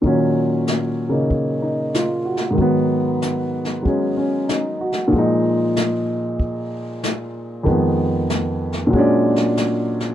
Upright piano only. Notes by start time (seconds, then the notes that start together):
0.02 A#2 D#3 F#3
0.06 C#4
1.09 C#3 A#3 D#4
1.62 D#4
1.95 F4
2.25 F#4
2.51 G#2 D#3
2.58 F#3 B3
3.83 F#3 G#3 C#4
4.17 C#4
4.48 D#4
4.81 F#4
5.08 A#2 F3
5.15 G#3 D#4
7.63 F2 D#3 G#3
7.68 B3
8.87 A#2 F#3
8.93 G#3 C#4
8.98 D4